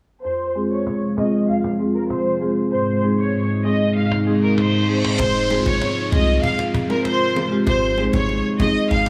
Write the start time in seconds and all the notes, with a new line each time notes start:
0.25 F2 C3 F3 G#3 F4 C5
0.56 G#3 C4 F4 G#4
0.71 C#5
0.87 C3, cajon slap
1.17 G#3 C4 F4 G#4 D#5, cajon slap
1.49 F2 F5
1.64 cajon slap
1.79 G#3 C4 F4 G#4
1.95 A#4
2.10 C3 C5, cajon slap
2.41 G#3 C4 F4 G#4
2.72 G#2 C3 D#3 G#3 D#4 C5
3.03 G#3 C4 D#4 G#4
3.19 C#5
3.34 G#2
3.65 G#3 C4 D#4 G#4 D#5
3.96 G#2 F5, reverse cymbal
4.12 cajon slap
4.27 G#3 C4 D#4 G#4
4.42 A#4
4.58 G#2 C5, cajon slap
4.88 G#3 C4 D#4 G#4
5.04 cajon slap
5.19 F1 C3 F3 G#3 F4 C5, cajon bass, high bongo, downlifter
5.50 G#3 C4 F4 G#4, high bongo
5.66 G#1 C#5, cajon bass, high bongo
5.82 cajon slap, high bongo
5.97 cajon slap
6.12 C2 G#3 C4 F4 G#4 D#5, cajon bass, cajon slap, low bongo
6.43 F5, cajon bass, high bongo
6.59 cajon slap
6.74 F4 G#4, cajon bass
6.90 G#3 C4 F4 A#4, cajon slap, high bongo
7.05 C5, cajon slap
7.21 cajon slap
7.36 F4 G#4, cajon slap, low bongo
7.51 G#3 C4 F4 G4, cajon slap
7.67 G#1 D#3 G#3 D#4 C5, cajon bass, high bongo
7.98 G#3 C4 D#4 G#4, high bongo
8.13 G#1 C#5, cajon bass, high bongo
8.29 cajon slap, high bongo
8.44 cajon slap
8.60 G1 G#3 C4 D#4 G#4 D#5, cajon bass, low bongo
8.75 cajon slap
8.91 G#1 F5, high bongo